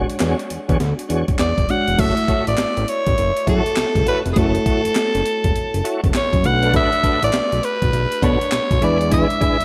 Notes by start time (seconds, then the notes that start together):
Already playing: G#3 D4 F#4 C#5
0.10 closed hi-hat
0.20 E2 D4 F#4 G#4 C#5, snare, clap, closed hi-hat
0.39 closed hi-hat
0.50 E2, closed hi-hat
0.68 E2 D4 F#4 G#4 C#5, kick, closed hi-hat
0.80 D2, snare, closed hi-hat
0.99 closed hi-hat
1.09 E2 D4 F#4 G#4 C#5, closed hi-hat
1.28 kick, closed hi-hat
1.39 E2 D5, snare, clap, closed hi-hat
1.58 E1, kick, closed hi-hat
1.69 G#3 D4 F#4 C#5 F#5, closed hi-hat
1.88 E1, closed hi-hat
1.98 F#1 A3 E4 F#4 A4 C#5 E5, kick, closed hi-hat, crash
2.17 closed hi-hat
2.28 E4 F#4 A4 C#5, kick, closed hi-hat
2.47 A1 D5, closed hi-hat
2.57 A1, snare, clap, closed hi-hat
2.77 A1, closed hi-hat
2.88 C#5, closed hi-hat
3.07 A1, kick, closed hi-hat
3.18 F#1, closed hi-hat
3.37 closed hi-hat
3.47 F#2 E4 F#4 A4 C#5, kick, closed hi-hat
3.66 closed hi-hat
3.76 C#2, snare, clap, closed hi-hat
3.95 C#2, kick, closed hi-hat
4.06 E4 F#4 A4 B4 C#5, closed hi-hat
4.26 F1, closed hi-hat
4.33 F#1 A3 E4 F#4 G#4 A4 C#5, kick, closed hi-hat
4.37 E4 F#4 A4 C#5
4.55 closed hi-hat
4.66 E4 F#4 A4 C#5, kick, closed hi-hat
4.85 F#1, closed hi-hat
4.95 snare, clap, closed hi-hat
5.15 F#1, closed hi-hat
5.26 closed hi-hat
5.44 E1, kick, closed hi-hat
5.56 F#1, closed hi-hat
5.74 F#1, closed hi-hat
5.84 E4 F#4 A4 C#5, closed hi-hat
6.04 F#1, kick, closed hi-hat
6.14 C#5, snare, clap, closed hi-hat
6.33 F#2, kick, closed hi-hat
6.44 B1 A3 D4 F#4 B4 F#5, closed hi-hat
6.62 D4 F#4 A4 B4, closed hi-hat
6.74 D4 F#4 A4 B4 E5, kick, closed hi-hat
6.92 closed hi-hat
7.03 D4 F#4 A4 B4, kick, closed hi-hat
7.23 A1 D5, closed hi-hat
7.33 B1, snare, clap, closed hi-hat
7.52 B1, closed hi-hat
7.63 B4, closed hi-hat
7.82 B1, kick, closed hi-hat
7.93 B1, closed hi-hat
8.12 closed hi-hat
8.22 B2 D4 F#4 A4 B4 C#5, kick, closed hi-hat
8.41 closed hi-hat
8.52 B1, snare, clap, closed hi-hat
8.71 B1, kick, closed hi-hat
8.81 E2 G#3 D4 E4 G#4 B4 D5, closed hi-hat
9.01 closed hi-hat
9.11 D4 E4 G#4 B4 E5, kick, closed hi-hat, tambourine
9.30 closed hi-hat
9.40 D4 E4 G#4 B4, kick, closed hi-hat
9.60 E2, closed hi-hat